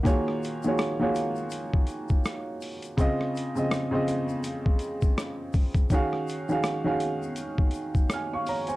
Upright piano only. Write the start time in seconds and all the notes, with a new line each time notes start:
0.03 D#3 A#3 F4 F#4 G#4 C#5
0.64 D#3 A#3 F4 F#4 G#4 C#5
0.99 D#3 A#3 F4 F#4 G#4 C#5
2.97 C#3 C4 F4 D#5
3.55 C#3 C4 F4 D#5
3.91 C#3 C4 F4 D#5
5.91 D#3 C#4 F#4 G#4 F5
6.49 D#3 C#4 F#4 G#4 F5
6.84 D#3 C#4 F#4 G#4 F5
8.13 G#5 F6
8.33 F5 C#6
8.49 C#5 A#5
8.68 C5 G#5